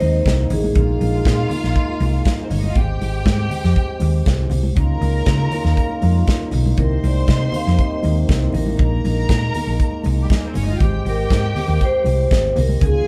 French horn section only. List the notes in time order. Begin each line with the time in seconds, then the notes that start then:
Already playing: C3 A#3 C4 D#4
0.74 G#3
2.77 C4 G4
4.76 C#3 A#3 D#4 F4
6.78 C3 A#3 C4
8.79 G#3
10.80 C4 G4
12.83 C#3 A#3 D#4 F4